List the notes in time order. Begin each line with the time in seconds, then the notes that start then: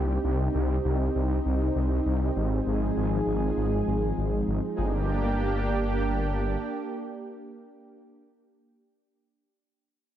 Already playing: C2 C4 D#4 G4
0.24 C2
0.54 C2
0.85 C2
1.15 C2
1.45 C2
1.75 C2
2.06 C2
2.36 G#1 F3 G#3 G#4
2.66 G#1
2.96 G#1
3.27 G#1
3.57 G#1
3.87 G#1
4.17 G#1
4.48 G#1
4.78 G1 A#3 D4 G4